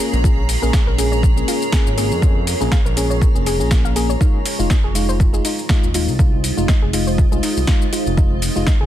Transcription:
Already playing: G#3 C#4 F4 G#4 A#4 C#5 A#5
0.00 A#3 C#4 G#4, shaker
0.13 A#1, shaker
0.24 A#3 C#4 F4 G#4, kick, shaker
0.49 open hi-hat, shaker
0.62 A#1 A#3 C#4 G#4 A#4, shaker
0.73 F5, kick, snare, shaker
0.87 A#1 A#4
0.98 A#3 C#4 G#4, open hi-hat, shaker
1.12 C#5, shaker
1.23 kick, shaker
1.36 A#3 C#4 G#4, shaker
1.48 F4, open hi-hat, shaker
1.62 shaker
1.72 A#3 C#4 G#4, kick, snare, shaker
1.86 G#1, shaker
1.97 A#3 C#4 G#4, open hi-hat, shaker
2.11 F2, shaker
2.22 A#3 C#4 F4 G#4, kick, shaker
2.47 open hi-hat, shaker
2.60 A#1 A#3 C#4 G#4 A#4, shaker
2.72 F5, kick, snare, shaker
2.86 A#1 A#4, shaker
2.96 A#3 C#4 G#4, open hi-hat, shaker
3.10 C#5, shaker
3.22 kick, shaker
3.35 F1 A#3 C#4 G#4, shaker
3.46 G#4, open hi-hat, shaker
3.60 A#1 A#3 C#4 G#4, shaker
3.71 F4, kick, snare, shaker
3.85 F5, shaker
3.96 A#3 C#4 G#4, open hi-hat, shaker
4.09 C#5, shaker
4.21 G#3 D#4 F4 C5, kick, shaker
4.45 D#5, open hi-hat, shaker
4.59 F1 G#3 D#4 F4, shaker
4.70 D#5, kick, snare, shaker
4.84 F1 G#4
4.95 G#3 D#4 F4, open hi-hat, shaker
5.09 C5, shaker
5.20 kick, shaker
5.33 G#3 D#4 F4 G#4, shaker
5.45 D#4, open hi-hat, shaker
5.59 shaker
5.69 G#3 D#4 F4, kick, snare, shaker
5.83 D#1, shaker
5.94 G#3 D#4 F4, open hi-hat, shaker
6.08 C2, shaker
6.19 G#3 D#4 F4, kick, shaker
6.44 open hi-hat, shaker
6.57 F1 G#3 D#4 F4, shaker
6.68 D#5, kick, snare, shaker
6.82 F1 G#4
6.93 G#3 D#4 F4, open hi-hat, shaker
7.07 C5, shaker
7.18 kick, shaker
7.32 C2 G#3 D#4 F4 G#4, shaker
7.43 D#4, open hi-hat, shaker
7.57 C2, shaker
7.67 G#3 D#4 F4, kick, snare, shaker
7.82 shaker
7.92 G#3 D#4 F4, open hi-hat, shaker
8.06 F1, shaker
8.17 G#3 D#4 F4 G4, kick, shaker
8.42 open hi-hat, shaker
8.55 F1 G#3 D#4 F4, shaker
8.67 D#5, kick, snare, shaker
8.80 F1 G#4

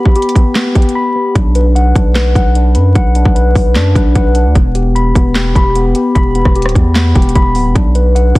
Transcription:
Already playing: B3 G4 B5
0.05 kick
0.15 G4, closed hi-hat
0.22 closed hi-hat
0.29 closed hi-hat
0.35 kick, closed hi-hat
0.55 B3, snare, clap, closed hi-hat
0.75 G4, kick, closed hi-hat
0.82 closed hi-hat
0.89 closed hi-hat
0.95 B5
1.16 B3
1.35 B1 D4, kick, closed hi-hat
1.55 B4, closed hi-hat
1.75 F#5, closed hi-hat
1.95 B1 D4, kick, closed hi-hat
2.15 B4, snare, clap, closed hi-hat
2.35 B1 F#5, kick, closed hi-hat
2.55 D4, closed hi-hat
2.75 F#2 B4, closed hi-hat
2.95 B1 F#5, kick, closed hi-hat
3.15 D4, closed hi-hat
3.25 B1, kick
3.35 B4, closed hi-hat
3.55 B1, kick, open hi-hat
3.75 F#2 D4, snare, clap, closed hi-hat
3.95 B1 B4, kick, closed hi-hat
4.15 B1 F#5, kick, closed hi-hat
4.35 D4, closed hi-hat
4.46 D2
4.55 E1 B3, kick, closed hi-hat
4.75 G4, closed hi-hat
4.95 B5, closed hi-hat
5.15 E1 B3, kick, closed hi-hat
5.35 G4, snare, clap, closed hi-hat
5.55 E1 B5, kick, closed hi-hat
5.75 B3, closed hi-hat
5.95 G4, closed hi-hat
6.15 E1 B5, kick, closed hi-hat
6.35 B3, closed hi-hat
6.45 E1, kick, cross-stick
6.56 G4, closed hi-hat
6.62 D1, cross-stick, closed hi-hat
6.69 closed hi-hat
6.75 E2, kick, closed hi-hat
6.95 B3, snare, clap, closed hi-hat
7.15 E1 G4, kick, closed hi-hat
7.22 closed hi-hat
7.29 closed hi-hat
7.35 E1 B5, kick, closed hi-hat
7.55 D1 B3, open hi-hat
7.65 E1
7.75 B1 D4, kick, closed hi-hat
7.95 B4, closed hi-hat
8.15 F#5, closed hi-hat
8.35 B1 D4, kick, closed hi-hat

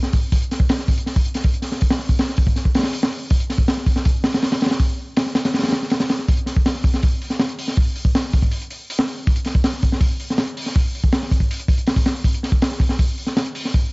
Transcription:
0.03 snare
0.13 kick, open hi-hat
0.32 kick, open hi-hat
0.42 closed hi-hat
0.51 snare, open hi-hat
0.60 kick
0.69 snare, open hi-hat
0.79 snare
0.88 kick, open hi-hat
0.98 closed hi-hat
1.06 snare, open hi-hat
1.16 kick, open hi-hat
1.25 closed hi-hat
1.34 snare, open hi-hat
1.44 kick, open hi-hat
1.54 closed hi-hat
1.62 snare, open hi-hat
1.72 snare
1.81 kick, open hi-hat
1.90 snare, open hi-hat
1.99 snare
2.09 kick, open hi-hat
2.19 snare, open hi-hat
2.29 snare
2.37 kick, open hi-hat
2.47 kick
2.56 snare, open hi-hat
2.65 kick
2.75 snare, open hi-hat
2.79 snare, open hi-hat
2.83 snare, open hi-hat
2.93 open hi-hat
3.03 snare
3.13 open hi-hat
3.30 kick, open hi-hat
3.40 closed hi-hat
3.50 snare, open hi-hat
3.58 kick
3.68 snare, open hi-hat
3.77 snare
3.86 kick, open hi-hat
3.96 snare
4.05 kick, open hi-hat
4.24 snare, open hi-hat
4.33 snare, open hi-hat
4.43 snare, open hi-hat
4.52 snare, open hi-hat
4.61 snare, open hi-hat
4.66 snare, open hi-hat
4.70 snare, open hi-hat
4.80 kick, open hi-hat
5.17 snare, open hi-hat
5.26 snare
5.35 snare, open hi-hat
5.45 snare, open hi-hat
5.54 snare, open hi-hat
5.59 snare, open hi-hat
5.63 snare, open hi-hat
5.68 snare, open hi-hat
5.72 snare, open hi-hat
5.82 snare
5.90 snare, open hi-hat
6.00 snare, open hi-hat
6.09 snare, open hi-hat
6.19 snare
6.28 kick, open hi-hat
6.37 closed hi-hat
6.46 snare, open hi-hat
6.57 kick
6.66 snare, open hi-hat
6.75 snare
6.84 kick, open hi-hat
6.94 snare
7.03 kick, open hi-hat
7.22 open hi-hat
7.30 snare
7.39 snare, open hi-hat
7.49 closed hi-hat
7.59 open hi-hat
7.68 snare
7.77 kick, open hi-hat
7.96 open hi-hat
8.05 kick
8.15 snare, open hi-hat
8.24 snare
8.33 kick, open hi-hat
8.42 kick
8.52 open hi-hat
8.62 closed hi-hat
8.71 open hi-hat
8.90 open hi-hat
8.99 snare
9.08 open hi-hat
9.27 kick, open hi-hat
9.36 closed hi-hat
9.45 snare, open hi-hat
9.55 kick
9.64 snare, open hi-hat
9.73 snare
9.82 kick, open hi-hat
9.92 snare
10.01 kick, open hi-hat
10.20 open hi-hat
10.30 snare
10.38 snare, open hi-hat
10.47 closed hi-hat
10.57 open hi-hat
10.66 snare
10.76 kick, open hi-hat
10.95 open hi-hat
11.04 kick
11.12 snare, open hi-hat
11.23 snare
11.31 kick, open hi-hat
11.40 kick
11.51 open hi-hat
11.59 closed hi-hat
11.68 kick, open hi-hat
11.78 closed hi-hat
11.87 snare, open hi-hat
11.96 kick, open hi-hat
12.06 snare, open hi-hat
12.14 snare, open hi-hat
12.24 kick, open hi-hat
12.34 closed hi-hat
12.43 snare, open hi-hat
12.52 kick
12.62 snare, open hi-hat
12.71 snare
12.80 kick, open hi-hat
12.89 snare
12.99 kick, open hi-hat
13.18 open hi-hat
13.27 snare
13.37 snare, open hi-hat
13.46 closed hi-hat
13.55 open hi-hat
13.65 snare
13.74 kick, open hi-hat

